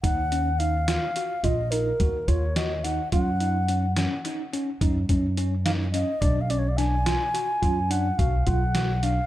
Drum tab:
HH |xxxxxxxxxxx|xxxxxxxxxxx|xxxxxxxxxxx|
SD |---o-----o-|---o-----o-|--oo-----o-|
BD |o----o-oo--|o-----oo---|o----o-oo--|